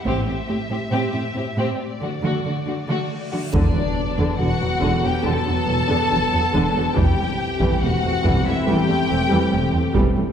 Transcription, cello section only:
\new Staff \with { instrumentName = "Cello section" } { \clef bass \time 4/4 \key b \phrygian \tempo 4 = 70 a,16 a,16 a,16 a,16 a,16 a,16 a,16 a,16 r16 d16 d16 d16 d16 d16 r16 d16 | e,16 e,16 r16 e,16 e,16 e,16 e,16 e,16 e,16 e,16 e,16 e,16 e,16 e,16 e,16 e,16 | e,16 e,16 r16 e,16 e,16 e,16 e,16 e,16 e,16 e,16 e,16 e,16 e,16 e,16 e,16 e,16 | }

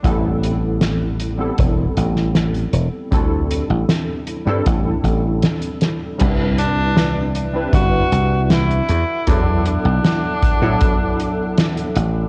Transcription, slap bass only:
\new Staff \with { instrumentName = "Slap bass" } { \clef bass \time 4/4 \key c \lydian \tempo 4 = 78 a,,2 e,,16 r16 a,,4 e,,16 r16 | d,8. a,,16 r8. g,16 a,,16 r16 a,,8 r4 | c,2 g,,16 r16 c,4 e,16 r16 | e,8. b,,16 r8. a,16 r4. a,,16 r16 | }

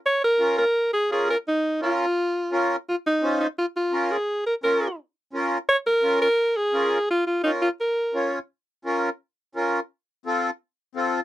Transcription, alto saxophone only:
\new Staff \with { instrumentName = "Alto saxophone" } { \time 4/4 \key bes \minor \tempo 4 = 171 des''8 bes'4 bes'4 aes'8 aes'8 bes'8 | ees'4 f'2~ f'8 r8 | f'8 ees'4 ees'8 f'8 f'4 aes'8~ | aes'8 bes'8 bes'4 r2 |
des''8 bes'4 bes'4 aes'4. | f'8 f'8 ees'8 f'8 bes'4. r8 | r1 | r1 | }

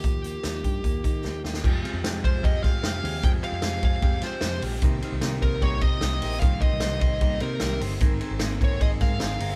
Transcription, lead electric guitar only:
\new Staff \with { instrumentName = "Lead electric guitar" } { \time 4/4 \key f \minor \tempo 4 = 151 g'2.~ g'8 r8 | r4. c''8 ees''8 f''4. | g''8 f''4 f''4 c''4 r8 | r4. bes'8 des''8 ees''4. |
f''8 ees''4 ees''4 bes'4 r8 | r4. des''8 ees''8 f''4. | }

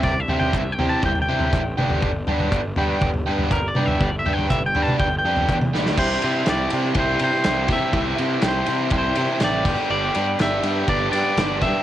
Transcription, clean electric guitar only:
\new Staff \with { instrumentName = "Clean electric guitar" } { \time 4/4 \key c \major \tempo 4 = 122 \tuplet 3/2 { d''8 e''8 g''8 e''8 g''8 a''8 g''8 g''4~ } g''4~ | g''4. r4. \tuplet 3/2 { bes'8 d''8 e''8 } | \tuplet 3/2 { d''8 e''8 g''8 e''8 g''8 a''8 g''8 g''4~ } g''4 | c''4 d''4 c''8 c''4 e''8~ |
e''8 r8 c''4 c''4 d''8. r16 | d''4 e''4 d''8 d''4 e''8 | }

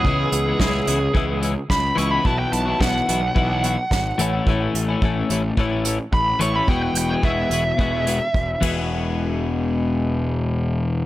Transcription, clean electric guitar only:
\new Staff \with { instrumentName = "Clean electric guitar" } { \time 4/4 \key e \major \tempo 4 = 108 <cis e gis b e'>8. <gis b e'>16 <cis e gis b e'>8 <e gis b e'>8 <cis e gis b e'>16 <gis b e'>16 <e gis b e'>8. r16 <e gis b e'>16 <gis b e'>16 | <b, e b e' fis'>8. <b e' fis'>16 <b, e b e' fis'>8 <e b e' fis'>8 <b, e b e' fis'>16 <b e' fis'>16 <e b e' fis'>8. r16 <a, e a cis' e'>16 <a cis' e'>16 | <a, e a cis' e'>8. <a cis' e'>16 <a, e a cis' e'>8 <e a cis' e'>8 <a, e a cis' e'>16 <a cis' e'>16 <e a cis' e'>8. r16 <e a cis' e'>16 <a cis' e'>16 | <e, b, e gis b fis'>8. <e gis b fis'>16 <e, b, e gis b fis'>8 <e gis b fis'>8 <e, b, e gis b fis'>16 <e gis b fis'>16 <e gis b fis'>8. r16 <e, b, e gis b fis'>8~ |
<e, b, e gis b fis'>1 | }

